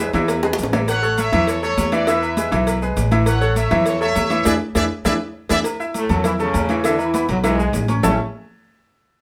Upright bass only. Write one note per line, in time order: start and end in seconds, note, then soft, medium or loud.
0.13 0.55 E2 loud
0.59 1.28 A1 medium
1.33 1.74 E2 loud
1.77 2.47 E2 loud
2.52 2.94 B1 loud
2.97 3.66 A1 medium
3.71 4.13 E2 loud
4.16 4.44 E2 loud
4.46 4.57 E2 medium
4.75 4.87 E2 medium
5.05 5.16 E2 loud
5.50 5.61 E2 loud
6.09 6.51 E2 loud
6.55 7.23 E2 medium
7.29 7.71 B1 loud
7.74 8.00 A1 loud
8.04 8.17 A1 medium